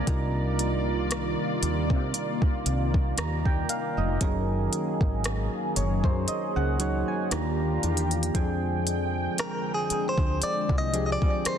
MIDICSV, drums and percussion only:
0, 0, Header, 1, 2, 480
1, 0, Start_track
1, 0, Tempo, 1034483
1, 34, Time_signature, 4, 2, 24, 8
1, 5374, End_track
2, 0, Start_track
2, 0, Title_t, "Drums"
2, 34, Note_on_c, 9, 36, 115
2, 34, Note_on_c, 9, 42, 74
2, 80, Note_off_c, 9, 36, 0
2, 80, Note_off_c, 9, 42, 0
2, 275, Note_on_c, 9, 42, 66
2, 321, Note_off_c, 9, 42, 0
2, 514, Note_on_c, 9, 42, 58
2, 519, Note_on_c, 9, 37, 112
2, 560, Note_off_c, 9, 42, 0
2, 565, Note_off_c, 9, 37, 0
2, 755, Note_on_c, 9, 42, 75
2, 801, Note_off_c, 9, 42, 0
2, 882, Note_on_c, 9, 36, 78
2, 928, Note_off_c, 9, 36, 0
2, 993, Note_on_c, 9, 42, 68
2, 1039, Note_off_c, 9, 42, 0
2, 1122, Note_on_c, 9, 36, 92
2, 1169, Note_off_c, 9, 36, 0
2, 1234, Note_on_c, 9, 42, 60
2, 1281, Note_off_c, 9, 42, 0
2, 1365, Note_on_c, 9, 36, 83
2, 1412, Note_off_c, 9, 36, 0
2, 1473, Note_on_c, 9, 42, 70
2, 1478, Note_on_c, 9, 37, 106
2, 1520, Note_off_c, 9, 42, 0
2, 1524, Note_off_c, 9, 37, 0
2, 1603, Note_on_c, 9, 36, 85
2, 1649, Note_off_c, 9, 36, 0
2, 1713, Note_on_c, 9, 42, 70
2, 1760, Note_off_c, 9, 42, 0
2, 1952, Note_on_c, 9, 42, 74
2, 1953, Note_on_c, 9, 36, 109
2, 1999, Note_off_c, 9, 42, 0
2, 2000, Note_off_c, 9, 36, 0
2, 2193, Note_on_c, 9, 42, 67
2, 2239, Note_off_c, 9, 42, 0
2, 2324, Note_on_c, 9, 36, 107
2, 2370, Note_off_c, 9, 36, 0
2, 2433, Note_on_c, 9, 42, 59
2, 2438, Note_on_c, 9, 37, 108
2, 2479, Note_off_c, 9, 42, 0
2, 2485, Note_off_c, 9, 37, 0
2, 2674, Note_on_c, 9, 42, 73
2, 2720, Note_off_c, 9, 42, 0
2, 2802, Note_on_c, 9, 36, 80
2, 2848, Note_off_c, 9, 36, 0
2, 2913, Note_on_c, 9, 42, 65
2, 2959, Note_off_c, 9, 42, 0
2, 3154, Note_on_c, 9, 42, 60
2, 3200, Note_off_c, 9, 42, 0
2, 3394, Note_on_c, 9, 42, 77
2, 3398, Note_on_c, 9, 37, 115
2, 3440, Note_off_c, 9, 42, 0
2, 3444, Note_off_c, 9, 37, 0
2, 3634, Note_on_c, 9, 42, 42
2, 3680, Note_off_c, 9, 42, 0
2, 3699, Note_on_c, 9, 42, 51
2, 3745, Note_off_c, 9, 42, 0
2, 3763, Note_on_c, 9, 42, 58
2, 3810, Note_off_c, 9, 42, 0
2, 3818, Note_on_c, 9, 42, 71
2, 3865, Note_off_c, 9, 42, 0
2, 3874, Note_on_c, 9, 36, 110
2, 3874, Note_on_c, 9, 42, 74
2, 3920, Note_off_c, 9, 36, 0
2, 3920, Note_off_c, 9, 42, 0
2, 4114, Note_on_c, 9, 42, 70
2, 4161, Note_off_c, 9, 42, 0
2, 4353, Note_on_c, 9, 42, 57
2, 4359, Note_on_c, 9, 37, 106
2, 4400, Note_off_c, 9, 42, 0
2, 4405, Note_off_c, 9, 37, 0
2, 4594, Note_on_c, 9, 42, 72
2, 4641, Note_off_c, 9, 42, 0
2, 4722, Note_on_c, 9, 36, 81
2, 4768, Note_off_c, 9, 36, 0
2, 4833, Note_on_c, 9, 42, 68
2, 4879, Note_off_c, 9, 42, 0
2, 4962, Note_on_c, 9, 36, 91
2, 5008, Note_off_c, 9, 36, 0
2, 5074, Note_on_c, 9, 42, 62
2, 5121, Note_off_c, 9, 42, 0
2, 5205, Note_on_c, 9, 36, 81
2, 5252, Note_off_c, 9, 36, 0
2, 5314, Note_on_c, 9, 42, 71
2, 5319, Note_on_c, 9, 37, 116
2, 5361, Note_off_c, 9, 42, 0
2, 5365, Note_off_c, 9, 37, 0
2, 5374, End_track
0, 0, End_of_file